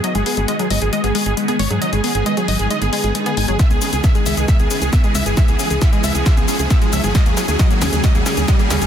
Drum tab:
HH |xxoxxxoxxxoxxxox|xxoxxxoxxxoxxxox|xxoxxxoxxxoxxxox|xxoxxxoxxxoxxxox|
SH |----------------|----------------|xxxxxxxxxxxxxxxx|xxxxxxxxxxxxxxxx|
SD |----------------|----------------|o---o---o---o---|o---o---o---o---|
BD |----------------|----------------|o---o---o---o---|o---o---o---o---|

HH |xxoxxxoxxxoxxxox|
SH |xxxxxxxxxxxxxxxx|
SD |o-o-o-o-o-o-o-o-|
BD |o---o---o---o---|